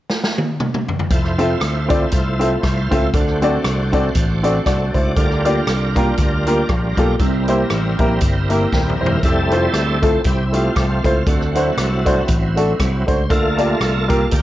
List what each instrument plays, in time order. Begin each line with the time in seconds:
0.10 snare
0.24 snare
0.38 high tom
0.60 mid tom
0.74 mid tom
0.89 floor tom
0.99 floor tom
1.10 fingered electric bass F1, tonewheel organ A3 E4 F4 C5, kick, closed hi-hat
1.25 cross-stick
1.38 grand piano C4 F4 A4 E5, closed hi-hat
1.61 fingered electric bass D2, cross-stick, closed hi-hat
1.88 grand piano C4 F4 A4 D5, kick, closed hi-hat
2.11 fingered electric bass C2, kick, closed hi-hat
2.39 grand piano C4 F4 A4 E5, closed hi-hat
2.63 fingered electric bass C2, kick, cross-stick, closed hi-hat
2.91 fingered electric bass C#2, grand piano C4 F4 A4 E5, kick, closed hi-hat
3.14 fingered electric bass D2, grand piano D3, tonewheel organ A3 D4 F4 C5, kick, closed hi-hat
3.20 tonewheel organ F#4
3.28 cross-stick
3.42 grand piano C4 F#4 A4 D5, closed hi-hat
3.64 fingered electric bass C2, cross-stick, closed hi-hat
3.93 grand piano C4 F#4 A4 D5, kick, closed hi-hat
4.15 fingered electric bass A1, kick, closed hi-hat
4.43 grand piano C4 F#4 A4 D5, closed hi-hat
4.66 fingered electric bass C2, grand piano F#4 D5, tonewheel organ A4 C5, kick, cross-stick, closed hi-hat
4.94 fingered electric bass C#2, grand piano E4 C5, tonewheel organ D5, kick, closed hi-hat
5.16 fingered electric bass D2, grand piano D3, tonewheel organ G3 D4 F4 A#4, kick, closed hi-hat
5.31 cross-stick
5.45 grand piano A#3 F4 G4 D5, closed hi-hat
5.67 fingered electric bass C2, cross-stick, closed hi-hat
5.96 grand piano A#3 F4 G4 A#4, kick, closed hi-hat
6.17 fingered electric bass D2, kick, cross-stick, closed hi-hat
6.46 grand piano A#3 F4 G4 A#4, closed hi-hat
6.69 fingered electric bass A#1, kick, cross-stick, closed hi-hat
6.97 fingered electric bass B1, grand piano A#3 F4 G4 A4, kick, closed hi-hat
7.20 fingered electric bass C2, grand piano C3, tonewheel organ G3 C4 E4 A4, kick, closed hi-hat
7.26 tonewheel organ A#4
7.48 grand piano A#3 E4 G4 C5, closed hi-hat
7.70 fingered electric bass A1, cross-stick, closed hi-hat
7.99 fingered electric bass A#1, grand piano A#3 E4 G4 A#4, kick, closed hi-hat
8.21 fingered electric bass G1, kick, cross-stick, closed hi-hat
8.49 grand piano A#3 E4 G4 A#4, closed hi-hat
8.72 fingered electric bass D#1, grand piano A#4 G5, kick, snare
8.89 mid tom
9.00 fingered electric bass E1, grand piano E4 C5, tonewheel organ C5
9.06 floor tom
9.23 fingered electric bass F1, tonewheel organ G3 A3 C4 E4 A4, kick, closed hi-hat
9.51 grand piano A3 E4 F4 C5, closed hi-hat
9.73 fingered electric bass D2, cross-stick, closed hi-hat
10.02 grand piano A3 E4 F4 A4, kick, closed hi-hat
10.24 fingered electric bass C2, tonewheel organ C4 E4 G4, kick, closed hi-hat
10.46 tonewheel organ E4
10.52 grand piano A3 E4 F4 G4, tonewheel organ A3 C4 F4, closed hi-hat
10.76 fingered electric bass C2, kick, cross-stick, closed hi-hat
11.04 fingered electric bass C#2, grand piano A3 E4 F4 C5, tonewheel organ F4, kick, closed hi-hat
11.21 tonewheel organ F4
11.27 fingered electric bass D2, grand piano D3, tonewheel organ A3 C4 F#4, kick, closed hi-hat
11.41 cross-stick
11.55 tonewheel organ F#3 C4 E4, grand piano A3 D4 F#4 C5, closed hi-hat
11.77 fingered electric bass C2, cross-stick, closed hi-hat
12.05 grand piano A3 D4 F#4 C5, kick, closed hi-hat
12.28 fingered electric bass A1, kick, closed hi-hat
12.56 grand piano A3 D4 F#4 A4, closed hi-hat
12.79 fingered electric bass C2, tonewheel organ F#3 C4 E4, kick, cross-stick, closed hi-hat
13.07 fingered electric bass C#2, grand piano A3 D4 F#4 C5, tonewheel organ C5, kick, closed hi-hat
13.30 fingered electric bass D2, grand piano D3, tonewheel organ A3 A#3 F4 A4, kick, closed hi-hat
13.57 grand piano A#3 F4 G4 D5, closed hi-hat
13.81 fingered electric bass C2, cross-stick, closed hi-hat
14.08 grand piano A#3 F4 G4 A#4, kick, closed hi-hat
14.31 fingered electric bass D2, tonewheel organ A#3 G4, kick, closed hi-hat